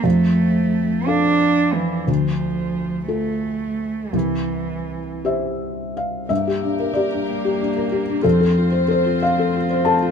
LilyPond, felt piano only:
\new Staff \with { instrumentName = "Felt piano" } { \time 6/8 \key g \dorian \tempo 4. = 60 << { r2. | r2. | r4. e''4 f''8 | e''4 d''2 |
a'4 c''8 f''4 a''8 | } \\ { f,4. <a' f''>4. | d,4. <f' a'>4. | c,4. <g' c''>4. | g,16 g'16 d'16 bes'16 g'16 d'8 g'16 d'16 bes'16 g'16 d'16 |
f,16 a'16 f'16 c''16 a'16 f'8 a'16 f'16 c''16 a'16 f'16 | } >> }